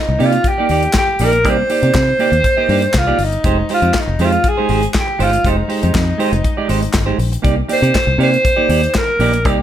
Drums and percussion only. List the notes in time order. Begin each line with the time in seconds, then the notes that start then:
0.20 open hi-hat
0.33 closed hi-hat
0.44 kick, closed hi-hat
0.69 open hi-hat
0.83 closed hi-hat
0.93 kick, snare, clap, closed hi-hat
1.19 open hi-hat
1.33 closed hi-hat
1.45 kick, closed hi-hat
1.70 open hi-hat
1.83 closed hi-hat
1.94 kick, snare, clap, closed hi-hat
2.19 open hi-hat
2.33 closed hi-hat
2.44 kick, closed hi-hat
2.69 open hi-hat
2.82 closed hi-hat
2.93 kick, snare, clap, closed hi-hat
3.19 open hi-hat
3.32 closed hi-hat
3.44 kick, closed hi-hat
3.69 open hi-hat
3.82 closed hi-hat
3.94 kick, snare, clap, closed hi-hat
4.19 open hi-hat
4.32 closed hi-hat
4.44 kick, closed hi-hat
4.69 open hi-hat
4.83 closed hi-hat
4.94 kick, snare, clap, closed hi-hat
5.20 open hi-hat
5.33 closed hi-hat
5.45 kick, closed hi-hat
5.70 open hi-hat
5.83 closed hi-hat
5.95 kick, snare, clap, closed hi-hat
6.20 open hi-hat
6.33 closed hi-hat
6.44 kick, closed hi-hat
6.69 open hi-hat
6.82 closed hi-hat
6.93 kick, snare, clap, closed hi-hat
7.19 open hi-hat
7.33 closed hi-hat
7.45 kick, closed hi-hat
7.69 open hi-hat
7.83 closed hi-hat
7.95 kick, snare, clap, closed hi-hat
8.21 open hi-hat
8.34 closed hi-hat
8.45 kick, closed hi-hat
8.69 open hi-hat
8.83 closed hi-hat
8.94 kick, snare, clap, closed hi-hat
9.20 open hi-hat
9.33 closed hi-hat
9.45 kick, closed hi-hat